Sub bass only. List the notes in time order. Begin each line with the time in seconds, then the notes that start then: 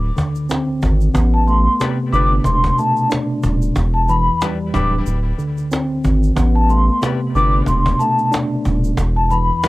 Already playing: D1
0.83 G#1
1.15 A1
2.13 G1
2.44 E1
3.44 D#1
3.76 E1
4.74 D1
5.06 D1
6.05 G#1
6.37 A1
7.35 G1
7.66 E1
8.66 D#1
8.97 E1